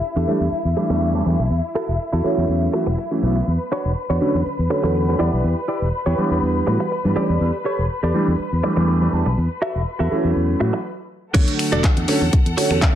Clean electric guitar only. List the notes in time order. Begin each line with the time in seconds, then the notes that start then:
0.16 D4 G4 A4
0.77 muted clean electric guitar stroke
0.90 muted clean electric guitar stroke
1.01 muted clean electric guitar stroke
1.39 muted clean electric guitar stroke
1.75 E4 F#4 A4
2.13 E4 F#4 A4
2.73 muted clean electric guitar stroke
2.86 muted clean electric guitar stroke
2.98 muted clean electric guitar stroke
3.36 muted clean electric guitar stroke
3.72 D4 F#4 C#5
4.10 D4 F#4 C#5
4.70 muted clean electric guitar stroke
4.83 muted clean electric guitar stroke
4.95 muted clean electric guitar stroke
5.19 E4 G4 D5
5.68 E4 G4 D5
6.06 E4 G4 C#5
6.67 muted clean electric guitar stroke
6.80 muted clean electric guitar stroke
6.91 muted clean electric guitar stroke
7.16 G4 A4 D5
7.65 G4 A4 C#5
8.03 G4 A4 D5
8.63 muted clean electric guitar stroke
8.77 muted clean electric guitar stroke
8.88 muted clean electric guitar stroke
9.26 muted clean electric guitar stroke
9.62 F#4 A4 E5
9.99 F#4 A4 E5
10.60 muted clean electric guitar stroke
10.73 muted clean electric guitar stroke
11.34 D4 F#4 A4 C#5
11.72 D4 F#4 A4 D5
12.08 muted clean electric guitar stroke
12.21 muted clean electric guitar stroke
12.33 muted clean electric guitar stroke
12.57 muted clean electric guitar stroke
12.71 muted clean electric guitar stroke
12.82 D4 F#4 A4 E5